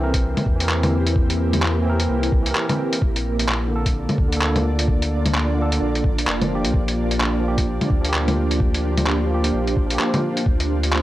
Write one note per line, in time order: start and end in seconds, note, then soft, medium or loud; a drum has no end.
0.00 0.35 C2 loud
0.00 0.55 E3 medium
0.00 2.98 A#3 medium
0.00 0.57 C4 medium
0.00 2.98 C4 medium
0.00 2.98 E4 medium
0.00 2.98 G4 medium
0.00 0.59 A#4 medium
0.00 1.14 C5 medium
0.14 kick loud
0.14 closed hi-hat medium
0.37 closed hi-hat soft
0.37 low bongo soft
0.46 2.08 E2 medium
0.46 kick loud
0.56 1.80 E3 medium
0.60 1.83 C4 medium
0.60 1.85 A#4 medium
0.60 closed hi-hat medium
0.69 clap loud
0.83 closed hi-hat soft
0.83 low bongo medium
1.07 closed hi-hat medium
1.16 3.00 A#4 medium
1.16 kick loud
1.30 closed hi-hat soft
1.53 closed hi-hat medium
1.53 low bongo soft
1.62 clap loud
1.82 2.41 E3 medium
1.82 2.43 C4 medium
1.90 2.45 A#4 medium
2.00 closed hi-hat medium
2.09 2.31 C2 medium
2.23 closed hi-hat soft
2.32 2.54 C2 medium
2.32 kick loud
2.42 2.99 E3 medium
2.42 closed hi-hat medium
2.47 3.01 C4 medium
2.47 3.03 A#4 medium
2.55 clap loud
2.69 closed hi-hat soft
2.69 low bongo medium
2.93 closed hi-hat medium
3.01 4.07 A#1 loud
3.01 10.42 A#3 medium
3.01 11.02 D4 medium
3.01 11.02 F4 medium
3.01 4.86 A4 medium
3.01 8.56 D5 medium
3.01 kick loud
3.16 closed hi-hat soft
3.39 closed hi-hat medium
3.49 clap loud
3.68 4.27 D3 medium
3.72 4.29 A#3 medium
3.76 4.31 A4 medium
3.86 kick loud
3.86 closed hi-hat soft
4.09 closed hi-hat soft
4.09 low bongo soft
4.18 5.80 D2 medium
4.18 kick loud
4.28 5.53 D3 medium
4.28 closed hi-hat medium
4.33 5.56 A#3 medium
4.37 5.58 A4 medium
4.42 clap loud
4.56 closed hi-hat soft
4.56 low bongo medium
4.79 closed hi-hat medium
4.88 kick loud
5.02 closed hi-hat soft
5.26 closed hi-hat medium
5.26 low bongo soft
5.35 clap loud
5.54 6.13 D3 medium
5.54 6.15 A#3 medium
5.62 6.17 A4 medium
5.72 closed hi-hat medium
5.81 6.03 A#1 medium
5.95 closed hi-hat soft
6.04 6.26 A#1 medium
6.04 kick loud
6.18 closed hi-hat medium
6.27 6.66 F1 medium
6.27 clap loud
6.42 closed hi-hat soft
6.42 low bongo medium
6.47 7.39 F3 medium
6.47 7.42 A#3 medium
6.55 7.44 G4 medium
6.65 6.73 C2 medium
6.65 closed hi-hat medium
6.73 7.79 A#1 loud
6.73 10.42 G4 medium
6.73 kick loud
6.88 closed hi-hat soft
7.11 closed hi-hat medium
7.20 clap loud
7.40 7.99 F3 medium
7.44 8.01 A#3 medium
7.44 8.03 G4 medium
7.58 kick loud
7.58 closed hi-hat soft
7.81 closed hi-hat soft
7.81 low bongo soft
7.90 9.52 D2 medium
7.90 kick loud
8.01 9.25 F3 medium
8.01 closed hi-hat soft
8.05 9.28 A#3 medium
8.05 9.30 G4 medium
8.14 clap loud
8.28 closed hi-hat soft
8.28 low bongo medium
8.51 closed hi-hat medium
8.60 10.44 C5 medium
8.60 kick loud
8.74 closed hi-hat soft
8.97 closed hi-hat soft
8.97 low bongo medium
9.06 clap loud
9.26 9.85 F3 medium
9.26 9.87 A#3 medium
9.34 9.89 G4 medium
9.44 closed hi-hat soft
9.53 9.75 A#1 medium
9.67 closed hi-hat soft
9.76 9.98 A#1 medium
9.76 kick loud
9.87 10.43 F3 medium
9.87 closed hi-hat soft
9.91 10.45 A#3 medium
9.91 10.47 G4 medium
9.99 clap medium
10.14 closed hi-hat soft
10.14 low bongo medium
10.37 closed hi-hat medium
10.46 11.02 D2 medium
10.46 11.02 C4 medium
10.46 11.02 A4 medium
10.46 11.02 D5 medium
10.46 kick loud
10.60 closed hi-hat soft
10.83 closed hi-hat medium
10.93 clap medium